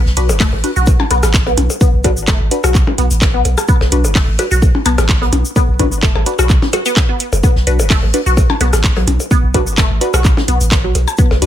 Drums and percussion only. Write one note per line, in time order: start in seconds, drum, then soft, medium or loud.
0.06 snare medium
0.17 closed hi-hat loud
0.17 shaker medium
0.29 percussion blips medium
0.29 cabasa medium
0.40 kick loud
0.40 snare loud
0.40 clap loud
0.40 open hi-hat medium
0.40 cabasa soft
0.53 percussion blips soft
0.64 closed hi-hat medium
0.64 shaker medium
0.76 cabasa medium
0.86 kick loud
0.86 percussion blips medium
0.86 cabasa soft
0.86 shaker medium
1.00 percussion blips medium
1.11 closed hi-hat medium
1.11 percussion blips soft
1.11 shaker medium
1.22 cross-stick medium
1.22 snare soft
1.22 closed hi-hat soft
1.22 cabasa medium
1.34 kick loud
1.34 snare loud
1.34 clap loud
1.34 cabasa soft
1.34 shaker medium
1.47 closed hi-hat soft
1.47 percussion blips medium
1.57 closed hi-hat medium
1.57 percussion blips medium
1.57 shaker medium
1.70 percussion blips soft
1.70 cabasa medium
1.81 kick loud
1.81 cabasa soft
1.81 shaker medium
2.04 kick medium
2.04 closed hi-hat loud
2.04 percussion blips medium
2.04 shaker medium
2.17 cabasa medium
2.27 kick loud
2.27 snare loud
2.27 clap loud
2.27 percussion blips medium
2.27 percussion blips soft
2.27 cabasa soft
2.27 shaker medium
2.51 closed hi-hat medium
2.51 shaker medium
2.64 cross-stick medium
2.64 percussion blips medium
2.64 cabasa medium
2.75 kick loud
2.75 clap medium
2.75 cabasa soft
2.75 shaker medium
2.87 percussion blips soft
2.87 percussion blips medium
2.98 closed hi-hat medium
2.98 shaker medium
3.11 closed hi-hat soft
3.11 cabasa medium
3.21 kick loud
3.21 snare loud
3.21 clap medium
3.21 percussion blips medium
3.21 cabasa soft
3.21 shaker medium
3.45 closed hi-hat medium
3.45 percussion blips soft
3.45 shaker medium
3.58 cross-stick medium
3.58 percussion blips medium
3.58 cabasa medium
3.68 kick loud
3.68 cabasa soft
3.68 shaker medium
3.81 snare medium
3.81 percussion blips medium
3.92 closed hi-hat loud
3.92 shaker medium
4.04 percussion blips soft
4.04 cabasa medium
4.15 kick loud
4.15 snare loud
4.15 clap loud
4.15 open hi-hat medium
4.15 cabasa soft
4.39 closed hi-hat loud
4.39 percussion blips medium
4.39 shaker medium
4.51 cabasa medium
4.62 kick loud
4.62 percussion blips medium
4.62 cabasa soft
4.62 shaker medium
4.75 percussion blips medium
4.85 closed hi-hat loud
4.85 percussion blips medium
4.85 shaker medium
4.98 cross-stick medium
4.98 snare soft
4.98 closed hi-hat soft
4.98 percussion blips medium
4.98 cabasa medium
5.09 kick loud
5.09 snare loud
5.09 clap medium
5.09 cabasa soft
5.09 shaker medium
5.22 closed hi-hat soft
5.22 percussion blips soft
5.32 closed hi-hat loud
5.32 percussion blips medium
5.32 shaker medium
5.45 cabasa soft
5.56 kick loud
5.56 percussion blips medium
5.56 cabasa soft
5.56 shaker medium
5.79 kick medium
5.79 closed hi-hat loud
5.79 percussion blips soft
5.79 percussion blips medium
5.79 shaker medium
5.92 cabasa soft
6.03 kick loud
6.03 snare loud
6.03 clap loud
6.03 cabasa soft
6.03 shaker medium
6.15 percussion blips medium
6.26 closed hi-hat loud
6.26 shaker medium
6.39 cross-stick medium
6.39 percussion blips soft
6.39 cabasa medium
6.49 kick loud
6.49 clap medium
6.49 cabasa soft
6.49 shaker medium
6.62 snare medium
6.62 percussion blips medium
6.73 closed hi-hat loud
6.73 percussion blips medium
6.73 shaker medium
6.85 closed hi-hat soft
6.85 cabasa soft
6.96 kick loud
6.96 snare loud
6.96 clap medium
6.96 percussion blips soft
6.96 cabasa soft
6.96 shaker medium
7.20 closed hi-hat loud
7.20 shaker medium
7.33 percussion blips medium
7.33 cabasa soft
7.43 kick loud
7.43 percussion blips soft
7.43 cabasa soft
7.43 shaker medium
7.56 snare medium
7.67 closed hi-hat medium
7.67 shaker medium
7.79 percussion blips medium
7.79 cabasa soft
7.90 kick loud
7.90 snare loud
7.90 clap medium
7.90 open hi-hat medium
7.90 cabasa soft
8.03 percussion blips soft
8.14 closed hi-hat medium
8.14 shaker medium
8.26 cabasa medium
8.37 kick loud
8.37 percussion blips medium
8.37 cabasa soft
8.37 shaker loud
8.50 percussion blips medium
8.61 closed hi-hat medium
8.61 percussion blips soft
8.61 shaker medium
8.73 cross-stick medium
8.73 snare soft
8.73 closed hi-hat soft
8.73 cabasa soft
8.84 kick loud
8.84 snare loud
8.84 clap medium
8.84 cabasa soft
8.84 shaker medium
8.96 closed hi-hat soft
8.96 percussion blips medium
9.07 closed hi-hat medium
9.07 percussion blips medium
9.07 shaker medium
9.20 percussion blips soft
9.20 cabasa soft
9.31 kick loud
9.31 cabasa soft
9.31 shaker medium
9.54 kick medium
9.54 closed hi-hat medium
9.54 percussion blips medium
9.54 shaker medium
9.67 cabasa medium
9.77 kick loud
9.77 snare loud
9.77 clap medium
9.77 percussion blips medium
9.77 percussion blips soft
9.77 cabasa soft
9.77 shaker loud
10.01 closed hi-hat medium
10.01 shaker medium
10.14 cross-stick medium
10.14 percussion blips medium
10.14 cabasa medium
10.25 kick loud
10.25 clap medium
10.25 cabasa soft
10.25 shaker loud
10.37 snare medium
10.37 percussion blips soft
10.37 percussion blips medium
10.48 closed hi-hat medium
10.48 shaker medium
10.61 closed hi-hat soft
10.61 cabasa medium
10.72 kick loud
10.72 snare loud
10.72 clap medium
10.72 percussion blips medium
10.72 cabasa soft
10.72 shaker medium
10.95 closed hi-hat medium
10.95 percussion blips soft
10.95 shaker medium
11.08 percussion blips medium
11.08 cabasa medium
11.17 kick loud
11.17 cabasa soft
11.17 shaker medium
11.31 snare medium
11.31 percussion blips medium
11.42 closed hi-hat medium
11.42 shaker medium